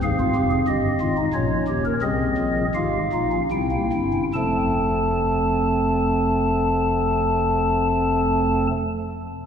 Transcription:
0.03 0.23 G#1 loud
0.03 0.23 G#2 loud
0.03 1.16 C4 loud
0.03 0.17 G#4 loud
0.03 0.58 F5 loud
0.19 0.33 F4 loud
0.35 0.56 F1 medium
0.35 0.56 F2 medium
0.35 0.49 G4 loud
0.51 0.65 G#4 medium
0.67 0.88 G1 medium
0.67 0.88 G2 medium
0.67 0.88 G4 loud
0.67 1.25 D#5 medium
1.01 1.21 G#1 medium
1.01 1.22 G#2 medium
1.01 1.15 F4 loud
1.18 1.32 D#4 loud
1.34 1.55 A#1 medium
1.34 1.55 A#2 medium
1.34 1.93 C#4 medium
1.34 1.55 F4 loud
1.34 1.93 C#5 medium
1.68 1.90 D#1 medium
1.68 1.90 D#2 medium
1.68 1.83 G4 loud
1.85 2.00 A#4 loud
2.02 2.25 C2 loud
2.02 2.25 C3 loud
2.02 2.65 C4 loud
2.02 2.65 G#4 loud
2.02 2.65 D#5 loud
2.38 2.61 A#1 medium
2.38 2.61 A#2 medium
2.75 2.98 G#1 medium
2.75 2.98 G#2 medium
2.75 2.98 F4 medium
2.75 2.98 G4 medium
2.75 3.41 F5 medium
3.13 3.37 A#1 medium
3.13 3.37 A#2 medium
3.13 3.30 D#4 medium
3.13 3.37 F4 medium
3.32 3.49 C#4 medium
3.51 3.77 C2 medium
3.51 3.77 C3 medium
3.51 3.69 C4 medium
3.51 4.23 E4 medium
3.51 4.23 G5 medium
3.71 3.89 A#3 medium
3.92 4.19 G1 medium
3.92 4.19 G2 medium
3.92 4.11 C4 medium
4.13 4.32 C#4 medium
4.34 8.67 F1 medium
4.34 8.67 F2 medium
4.34 8.70 F3 medium
4.34 8.70 A3 medium
4.34 8.67 C4 medium
4.34 8.67 A4 medium
4.34 8.67 A5 medium

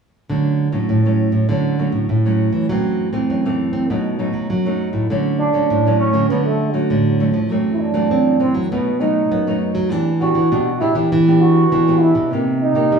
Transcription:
0.30 0.68 D3 medium
0.30 0.87 D3 soft
0.30 0.70 F#3 soft
0.30 0.70 A3 soft
0.30 0.70 C#4 soft
0.72 0.86 A2 medium
0.72 0.98 F#3 medium
0.72 0.99 A3 medium
0.72 0.99 C#4 medium
0.89 1.28 A2 medium
0.89 1.46 A2 soft
1.05 1.45 F#3 soft
1.05 1.45 A3 soft
1.05 1.46 C#4 medium
1.32 1.46 A2 medium
1.49 1.87 D3 medium
1.49 2.07 D3 soft
1.49 1.75 F#3 soft
1.49 1.75 A3 soft
1.49 1.75 C#4 soft
1.79 2.07 F#3 medium
1.79 2.08 A3 soft
1.79 2.08 C#4 medium
1.92 2.06 A2 medium
2.09 2.48 A2 medium
2.09 2.67 A2 soft
2.26 2.65 F#3 medium
2.26 2.66 A3 soft
2.26 2.66 C#4 medium
2.53 2.66 E3 medium
2.69 3.27 F#2 soft
2.69 3.10 E3 soft
2.69 3.08 F#3 medium
2.69 3.10 A3 soft
2.69 3.11 C4 soft
3.13 3.39 E3 soft
3.13 3.39 A3 medium
3.13 3.26 C4 medium
3.13 3.40 C4 medium
3.30 3.87 F#2 soft
3.30 3.68 C4 medium
3.46 3.86 E3 medium
3.46 3.86 A3 medium
3.46 3.86 C4 medium
3.73 3.87 C4 medium
3.90 4.47 B2 soft
3.90 4.29 B2 medium
3.90 4.15 F#3 soft
3.90 4.16 A3 soft
3.90 4.16 D#4 soft
4.19 4.48 F#3 soft
4.19 4.48 A3 soft
4.19 4.48 D#4 soft
4.33 4.47 F#3 medium
4.50 5.07 F#2 soft
4.50 4.88 F#3 medium
4.66 5.06 F#3 soft
4.66 5.06 A3 soft
4.66 5.06 D#4 medium
4.93 5.07 A2 medium
5.10 5.49 D3 medium
5.10 5.68 D3 soft
5.10 5.51 F#3 soft
5.10 5.51 A3 soft
5.10 5.51 C#4 medium
5.39 5.96 D4 loud
5.53 5.67 D3 medium
5.53 5.80 F#3 medium
5.53 5.80 A3 medium
5.53 5.80 C#4 medium
5.70 6.09 A2 medium
5.70 6.28 A2 medium
5.87 6.11 F#3 medium
5.87 6.11 A3 medium
5.87 6.12 C#4 medium
5.99 6.28 C#4 medium
6.13 6.27 D3 medium
6.13 6.25 F#3 medium
6.13 6.25 A3 medium
6.13 6.25 C#4 medium
6.30 6.82 D3 medium
6.30 6.88 D3 soft
6.30 6.59 F#3 medium
6.30 6.59 A3 soft
6.30 6.44 B3 medium
6.30 6.59 C#4 medium
6.45 6.75 A3 medium
6.73 7.19 F#3 medium
6.73 7.15 F#3 medium
6.73 7.15 A3 medium
6.73 7.15 C#4 medium
6.90 7.48 A2 soft
6.90 7.29 D3 medium
7.20 7.38 F#3 soft
7.20 7.38 A3 soft
7.20 7.38 C#4 medium
7.34 7.51 F3 medium
7.51 8.08 F#2 soft
7.51 7.91 E3 soft
7.51 7.89 F#3 medium
7.51 7.91 A3 medium
7.51 7.92 C4 soft
7.74 7.82 E4 medium
7.80 8.40 D4 medium
7.94 8.35 E3 medium
7.94 8.08 F#3 medium
7.94 8.35 A3 medium
7.94 8.36 C4 medium
8.11 8.68 F#2 medium
8.11 8.49 C4 medium
8.40 8.66 E3 medium
8.40 8.66 A3 soft
8.40 8.66 C4 soft
8.40 8.54 C4 medium
8.54 8.68 F#3 medium
8.72 9.28 B2 soft
8.72 9.23 B2 medium
8.72 8.89 F#3 soft
8.72 8.89 A3 soft
8.72 9.02 B3 medium
8.72 8.89 D#4 medium
9.00 9.41 F#3 medium
9.00 9.41 A3 medium
9.00 9.61 D#4 medium
9.00 9.42 D#4 medium
9.31 9.88 F#2 medium
9.31 9.70 B3 medium
9.47 9.87 F#3 medium
9.47 9.87 A3 medium
9.47 9.87 D#4 medium
9.75 9.92 F#3 medium
9.91 10.49 E3 soft
9.91 10.30 E3 medium
9.91 10.09 B3 medium
9.91 10.09 D4 soft
9.91 10.10 G4 medium
10.21 10.39 B3 soft
10.21 10.39 D4 medium
10.21 10.77 F#4 medium
10.21 10.39 G4 medium
10.35 10.48 E3 medium
10.52 11.09 B2 medium
10.52 10.90 B2 medium
10.52 10.69 B3 medium
10.52 10.70 D4 medium
10.52 10.70 G4 medium
10.80 10.91 B3 soft
10.80 10.92 D4 medium
10.80 10.94 E4 medium
10.80 10.92 G4 medium
10.95 11.08 E3 medium
10.95 11.21 B3 medium
10.95 11.21 D4 medium
10.95 11.21 G4 medium
11.12 11.69 E3 soft
11.12 11.63 E3 medium
11.28 11.68 B3 medium
11.28 11.68 D4 soft
11.28 11.68 G4 medium
11.40 12.02 F#4 loud
11.72 12.29 B2 soft
11.72 12.10 E3 medium
11.72 11.81 B3 soft
11.72 11.81 D4 medium
11.72 11.81 G4 medium
11.88 12.28 B3 medium
11.88 12.28 D4 medium
11.88 12.28 G4 medium
12.01 12.31 E4 medium
12.15 12.32 B2 medium
12.32 12.70 C3 medium
12.32 12.89 C3 medium
12.32 12.73 A#3 soft
12.32 12.73 D#4 medium
12.32 12.73 G4 medium
12.61 12.99 D#4 medium
12.75 12.89 C3 medium
12.75 12.99 A#3 medium
12.75 12.99 D#4 medium
12.75 12.99 G4 medium
12.92 12.99 G2 soft
12.92 12.99 G3 medium

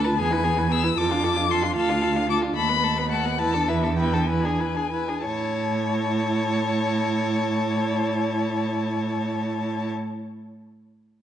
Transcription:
0.00 0.21 D2 medium
0.00 0.20 A5 medium
0.05 0.18 F4 soft
0.05 0.18 B4 soft
0.19 0.97 E2 medium
0.19 0.32 B3 medium
0.19 0.34 G#4 medium
0.19 0.74 G#5 medium
0.31 0.46 E4 soft
0.31 0.45 B4 medium
0.44 0.59 B3 medium
0.44 0.60 G#4 medium
0.57 0.70 E4 soft
0.57 0.71 B4 soft
0.70 0.85 B3 medium
0.70 0.86 G#4 medium
0.70 0.99 E6 medium
0.84 0.96 E4 soft
0.84 0.97 B4 soft
0.96 1.78 F2 medium
0.96 1.11 F4 medium
0.96 1.12 A4 medium
0.96 1.53 D6 medium
1.10 1.25 D4 soft
1.10 1.25 F4 soft
1.23 1.38 F4 medium
1.23 1.38 A4 medium
1.37 1.49 D4 soft
1.37 1.50 F4 soft
1.50 1.64 F4 soft
1.50 1.65 A4 soft
1.50 1.76 C6 medium
1.63 1.76 D4 soft
1.63 1.76 F4 soft
1.76 2.55 D2 medium
1.76 1.91 F4 medium
1.76 1.91 A4 medium
1.76 2.28 F5 medium
1.90 2.05 D4 soft
1.90 2.04 F4 soft
2.02 2.18 F4 soft
2.02 2.17 A4 medium
2.16 2.29 D4 soft
2.16 2.29 F4 soft
2.29 2.45 F4 soft
2.29 2.44 A4 medium
2.29 2.38 D6 medium
2.43 2.56 D4 soft
2.43 2.55 F4 soft
2.56 3.41 D#2 medium
2.56 2.72 A3 medium
2.56 2.71 A4 medium
2.56 3.10 B5 medium
2.69 2.85 B3 soft
2.69 2.85 B4 soft
2.84 2.99 A3 soft
2.84 2.99 A4 soft
2.98 3.10 B3 soft
2.98 3.11 B4 soft
3.11 3.27 A3 soft
3.11 3.27 A4 soft
3.11 3.40 F#5 medium
3.25 3.39 B3 soft
3.25 3.38 B4 soft
3.38 4.99 E2 medium
3.38 3.55 E4 medium
3.38 3.55 B4 soft
3.38 3.70 A5 medium
3.54 3.70 D4 soft
3.54 3.71 A4 soft
3.68 3.85 E4 soft
3.68 3.85 B4 soft
3.68 3.96 E5 medium
3.83 3.97 D4 soft
3.83 3.98 A4 soft
3.97 4.14 E4 soft
3.97 4.15 B4 soft
3.97 4.29 G5 medium
4.13 4.27 D4 soft
4.13 4.28 A4 soft
4.27 4.45 E4 soft
4.27 4.47 B4 soft
4.27 5.23 G#5 medium
4.43 4.60 D4 soft
4.43 4.62 G#4 soft
4.58 4.76 E4 soft
4.58 4.78 B4 soft
4.75 4.90 D4 soft
4.75 4.91 G#4 soft
4.91 5.09 E4 soft
4.91 5.10 B4 soft
5.08 5.24 D4 soft
5.08 5.25 G#4 soft
5.24 9.89 A2 medium
5.24 9.89 E4 medium
5.24 9.90 C#5 medium
5.24 9.89 A5 medium

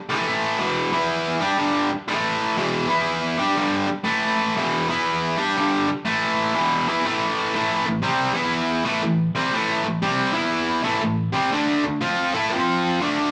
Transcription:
0.09 0.58 A2 medium
0.09 0.59 E3 loud
0.09 0.59 A3 loud
0.59 0.91 E2 medium
0.59 0.90 B2 medium
0.59 0.91 E3 loud
0.93 1.41 E3 medium
0.93 1.41 B3 loud
0.93 1.41 E4 loud
1.42 1.58 G3 medium
1.42 1.59 D4 medium
1.42 1.58 G4 medium
1.58 1.89 G2 medium
1.58 1.90 D3 medium
1.58 1.90 G3 loud
1.93 muted overdriven electric guitar stroke medium
2.08 2.57 A2 medium
2.08 2.56 E3 medium
2.08 2.57 A3 medium
2.57 2.89 E2 medium
2.57 2.88 B2 loud
2.57 2.87 E3 medium
2.88 3.38 E3 medium
2.88 3.38 B3 medium
2.88 3.39 E4 loud
3.38 3.55 G3 medium
3.38 3.56 D4 medium
3.38 3.57 G4 medium
3.56 3.86 G2 loud
3.56 3.88 D3 loud
3.56 3.88 G3 loud
3.88 muted overdriven electric guitar stroke medium
4.04 4.55 A2 medium
4.04 4.55 E3 medium
4.04 4.56 A3 loud
4.56 4.88 E2 medium
4.56 4.88 B2 medium
4.56 4.88 E3 medium
4.89 5.38 E3 medium
4.89 5.37 B3 medium
4.89 5.38 E4 loud
5.37 5.55 G3 medium
5.37 5.56 D4 medium
5.37 5.56 G4 medium
5.56 5.87 G2 loud
5.56 5.88 D3 medium
5.56 5.88 G3 medium
5.88 muted overdriven electric guitar stroke medium
6.05 6.54 A2 medium
6.05 6.54 E3 medium
6.05 6.55 A3 medium
6.54 6.87 E2 medium
6.54 6.87 B2 medium
6.54 6.87 E3 medium
6.88 7.05 E3 medium
6.88 7.05 B3 medium
6.88 7.05 E4 medium
7.05 7.54 A2 medium
7.05 7.54 E3 medium
7.05 7.55 A3 loud
7.55 7.85 A2 loud
7.55 7.85 E3 loud
7.55 7.87 A3 loud
7.86 8.01 A2 medium
7.86 8.01 E3 medium
8.02 8.33 C3 loud
8.02 8.34 G3 medium
8.02 8.34 C4 loud
8.34 8.84 E3 medium
8.34 8.85 B3 loud
8.34 8.85 E4 loud
8.84 9.02 A2 loud
8.84 9.02 E3 medium
8.84 9.03 A3 medium
9.03 9.30 A2 medium
9.03 9.30 E3 medium
9.35 9.53 C3 medium
9.35 9.53 G3 medium
9.35 9.53 C4 loud
9.53 9.83 A2 medium
9.53 9.84 E3 loud
9.53 9.86 A3 loud
9.84 9.99 A2 medium
9.84 9.99 E3 medium
10.02 10.33 C3 medium
10.02 10.33 G3 loud
10.02 10.33 C4 loud
10.33 10.82 E3 medium
10.33 10.83 B3 loud
10.33 10.83 E4 loud
10.83 11.01 A2 loud
10.83 11.01 E3 medium
10.83 11.01 A3 loud
11.02 11.28 A2 medium
11.02 11.28 E3 medium
11.32 11.51 C3 medium
11.32 11.51 G3 medium
11.32 11.51 C4 medium
11.52 11.83 D3 loud
11.52 11.83 A3 loud
11.52 11.84 D4 loud
11.84 11.98 D3 medium
11.84 11.99 A3 medium
12.01 12.33 F3 loud
12.01 12.33 C4 medium
12.01 12.33 F4 loud
12.34 12.53 A3 loud
12.34 12.53 E4 loud
12.34 12.51 A4 loud
12.52 13.01 F3 medium
12.52 13.01 C4 loud
12.52 13.02 F4 loud
13.01 13.31 D3 loud
13.01 13.31 A3 loud
13.01 13.31 D4 loud

